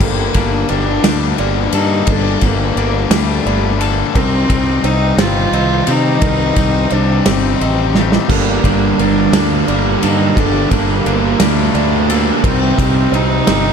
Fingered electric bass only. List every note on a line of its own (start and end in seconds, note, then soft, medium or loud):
0.00 0.28 G1 loud
0.35 0.63 G1 medium
0.70 0.98 G1 medium
1.05 1.33 D2 medium
1.39 1.67 G1 medium
1.73 2.01 G2 medium
2.07 2.36 G1 loud
2.42 2.70 G1 medium
2.76 3.04 G1 medium
3.10 3.39 D2 medium
3.46 4.02 G1 medium
4.16 4.43 C2 loud
4.50 4.78 C2 loud
4.84 5.12 C2 medium
5.17 5.46 G1 loud
5.52 5.81 C2 loud
5.88 6.16 C3 loud
6.22 6.50 C2 loud
6.57 6.85 C2 medium
6.92 7.20 C2 medium
7.26 7.54 G1 medium
7.61 8.17 A1 medium
8.30 8.58 G1 loud
8.64 8.92 G1 loud
8.98 9.27 G1 medium
9.32 9.61 D2 loud
9.68 9.96 G1 medium
10.04 10.31 G2 loud
10.36 10.65 G1 loud
10.71 10.99 G1 medium
11.06 11.34 G1 medium
11.40 11.68 D2 loud
11.74 12.30 D2 medium
12.44 12.72 C2 loud
12.78 13.06 C2 medium
13.12 13.40 C2 medium
13.48 13.73 G1 loud